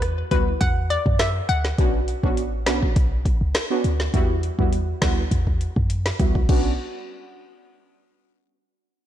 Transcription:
Already playing: 808-style bass E2
0.02 cross-stick, closed hi-hat
0.31 808-style bass D2, synth stab G3 B3 E4 F#4, synth pluck B4, kick, closed hi-hat
0.61 808-style bass E2, synth pluck F#5, kick, closed hi-hat
0.90 synth pluck D5, closed hi-hat
1.06 808-style bass F#2, kick
1.19 synth pluck E5, cross-stick, snare, closed hi-hat
1.49 808-style bass D2, synth pluck F#5, closed hi-hat
1.65 snare
1.78 808-style bass B1, synth stab B3 C#4 D4 F#4, kick, closed hi-hat
2.08 closed hi-hat
2.23 808-style bass A1, synth stab B3 C#4 D4 F#4, kick
2.37 closed hi-hat
2.66 808-style bass B1, synth stab B3 C#4 D4 F#4, cross-stick, snare, closed hi-hat
2.83 kick
2.96 808-style bass B1, kick, closed hi-hat
3.25 kick, closed hi-hat
3.41 808-style bass C#2
3.55 cross-stick, snare, closed hi-hat
3.70 synth stab B3 C#4 D4 F#4
3.84 808-style bass D2, closed hi-hat
4.00 snare
4.14 808-style bass E2, synth stab G3 B3 E4 F#4, kick, closed hi-hat
4.43 closed hi-hat
4.59 808-style bass E2, synth stab G3 B3 E4 F#4, kick
4.73 closed hi-hat
5.02 808-style bass D2, synth stab G3 B3 E4 F#4, kick, cross-stick, snare, closed hi-hat
5.31 808-style bass E2, kick, closed hi-hat
5.47 kick
5.61 closed hi-hat
5.76 808-style bass F#2, kick
5.90 closed hi-hat
6.06 snare
6.19 808-style bass D2, synth stab G3 B3 E4 F#4, kick, closed hi-hat
6.35 kick
6.49 808-style bass B1, synth stab B3 C#4 D4 F#4, kick, crash

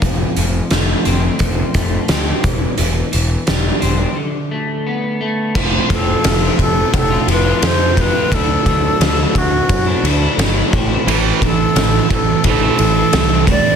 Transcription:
0.02 picked electric bass F1, clean electric guitar F2, kick, closed hi-hat
0.37 picked electric bass F1, clean electric guitar F3, closed hi-hat
0.71 picked electric bass F1, clean electric guitar A3, snare, closed hi-hat
1.05 picked electric bass F1, clean electric guitar C4, closed hi-hat
1.39 picked electric bass F1, clean electric guitar F3, kick, closed hi-hat
1.74 picked electric bass F1, clean electric guitar A3, kick, closed hi-hat
2.08 picked electric bass D2, clean electric guitar C4, snare, closed hi-hat
2.44 picked electric bass E1, clean electric guitar E3, kick, closed hi-hat
2.78 picked electric bass E1, clean electric guitar E3, closed hi-hat
3.12 picked electric bass E1, clean electric guitar E3, closed hi-hat
3.47 picked electric bass E1, clean electric guitar G3, snare, closed hi-hat
3.81 picked electric bass E1, clean electric guitar C4, closed hi-hat
4.16 clean electric guitar D3
4.51 clean electric guitar A3
4.87 clean electric guitar B3
5.21 clean electric guitar A3
5.55 picked electric bass F1, clean electric guitar F2 C3 F3 A3 C4 F4, kick, crash
5.88 picked electric bass F1, clean electric guitar F3 A3 C4 F4, alto flute A4, kick, ride
6.23 picked electric bass F1, clean electric guitar F2 C3 F3 A3 C4 F4, snare, ride
6.41 clean electric guitar F3 A3 C4 F4
6.58 picked electric bass F1, alto flute A4, muted clean electric guitar stroke, kick, ride
6.94 picked electric bass F1, alto flute A4, kick, ride
7.10 clean electric guitar F3 A3 C4 F4
7.28 picked electric bass F1, clean electric guitar F3 A3 C4 F4, ride
7.32 alto flute B4
7.45 clean electric guitar F3 A3 C4 F4
7.62 clean electric guitar F2 C3 C4 F4, picked electric bass F2, alto flute C5, snare, ride
7.80 clean electric guitar F3 A3 C4 F4
7.97 clean electric guitar F3 A3 C4 F4, alto flute B4, kick, ride
8.14 clean electric guitar F3 A3 C4 F4
8.31 picked electric bass D2, clean electric guitar D3 F#3 A3 D4 E4, alto flute A4, kick, ride
8.66 picked electric bass D2, clean electric guitar F#3 A3 D4 E4, kick, ride
9.00 picked electric bass D2, clean electric guitar D3 F#3 A3 D4 E4, snare, ride
9.18 clean electric guitar A3 D4 E4
9.35 picked electric bass D2, alto flute F#4, muted clean electric guitar stroke, kick, ride
9.69 picked electric bass F#2, kick, ride
9.86 clean electric guitar A3 D4 E4
10.03 picked electric bass D2, clean electric guitar F#3 A3 D4 E4, ride
10.21 clean electric guitar A3 D4 E4
10.38 picked electric bass G1, clean electric guitar D3 F#3 A3 D4 E4, snare, ride
10.56 clean electric guitar A3 D4 E4
10.71 picked electric bass A1, clean electric guitar A2 E3 A3 C4 E4, kick, ride
10.89 clean electric guitar A3 C4 E4
11.07 picked electric bass A1, clean electric guitar A2 E3 A3 C4 E4, ride
11.41 picked electric bass A1, distorted electric guitar A2, clean electric guitar E3 A3 C4 E4, alto flute A4, kick, ride
11.75 picked electric bass A1, clean electric guitar A2 E3 A3 C4 E4, snare, ride
11.92 clean electric guitar A3 C4 E4
12.10 picked electric bass A1, distorted electric guitar A2 E3, alto flute A4, muted clean electric guitar stroke, kick, ride
12.44 picked electric bass A1, distorted electric guitar A2 E3 A3, alto flute A4, kick, ride
12.62 clean electric guitar A3 C4 E4
12.78 picked electric bass A1, distorted electric guitar A2, clean electric guitar E3 A3 C4 E4, ride
12.95 clean electric guitar A3 C4 E4
13.13 picked electric bass C2, clean electric guitar A2 E3 A3 C4 E4, snare, ride
13.30 clean electric guitar A3 C4 E4
13.46 distorted electric guitar A2, clean electric guitar E3 A3 C4 E4, kick, ride
13.51 alto flute D5
13.64 clean electric guitar A3 C4 E4

